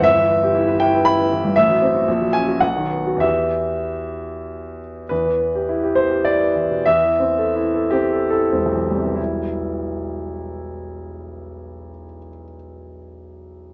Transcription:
0.00 G1 E5
0.17 E3
0.30 B3
0.43 G4
0.55 E4
0.68 B4
0.80 E4 G5
0.94 B4
1.05 E4 B5
1.19 B3
1.32 E3
1.45 G2
1.56 A1 E5
1.70 F#3
1.82 C4
1.95 F#4
2.08 A#1
2.21 F#3
2.33 C#4 G#5
2.48 F#4
2.60 B1 F#5
2.76 D#3
2.90 B3
3.07 F#4
3.17 E2 E3 B3 G4 E5
5.09 E2 B4
5.26 E3
5.40 B3
5.55 G4
5.69 E4
5.84 G4
5.95 B3 C5
6.11 G4
6.25 E4 D5
6.40 B3
6.56 E3
6.71 B2
6.86 E2 E5
7.03 E3
7.19 C4
7.38 A4
7.56 E4
7.75 A4
7.91 C4 G4
8.12 A4
8.30 E4 A4
8.52 E1 C4
8.65 B1
8.75 E3
8.91 G3
8.97 C3
9.04 B3
9.15 E4

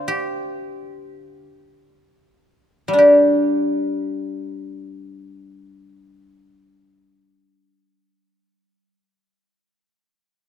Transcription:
Already playing: D3 A#4 C5 D5 F5 G5 A#5 C6
0.08 G4
1.16 F#4
1.42 F4
2.88 G3
2.93 D4
2.98 G4

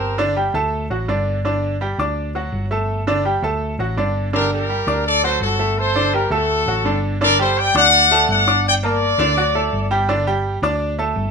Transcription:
Already playing: G1 C4 G4 A#4 C5 A5
0.18 D3 D4 D5
0.36 G3 G4 G5
0.54 D2 A3 A4 A5
0.90 A1 F#3 F#4 F#5
1.08 G1 D3 D4 D5
1.45 D3 D4 D5
1.81 G3 G4 G5
1.98 D2 D4 D5 D6
2.35 F#3 F#4 F#5
2.52 G1
2.71 A3 A4 A5
3.07 D3 D4 D5
3.25 G3 G4 G5
3.42 D2 A3 A4 A5
3.79 A1 F#3 F#4 F#5
3.97 G1 D3 D4 D5
4.33 D3 D4 G4 A#4 D5
4.53 G4 A#4
4.69 G3 G4 G5
4.87 D2 D4 D5 D6
5.07 A4 D5
5.24 F#3 F#4 A4 C5 F#5
5.40 G1 F#4 A4
5.59 A3 A4 A5
5.78 A4 C5
5.95 D3 D4 D5
6.13 G3 G4 A#4 G5
6.30 D2 A3 F#4 A4 A5
6.66 A1 F#3 F#4 F#5
6.84 G1 D3 D4 D5
7.21 D3 D4 A#4 D5
7.39 G3 G4 A4 C5 G5
7.59 D5 G5
7.75 D2 D4 D5 F#5 D6
8.11 A3 A4 A5
8.29 G1 D5 F#5
8.47 D4 D5 D6
8.67 D5 G5
8.83 A#3 A#4 D5 A5
9.18 D2 D3 D4 D5
9.37 F#3 F#4 F#5
9.55 A3 A4 A5
9.73 G1
9.91 G3 G4 G5
10.09 D3 D4 D5
10.27 G3 G4 G5
10.62 D2 D4 D5 D6
10.99 A3 A4 A5
11.16 G1

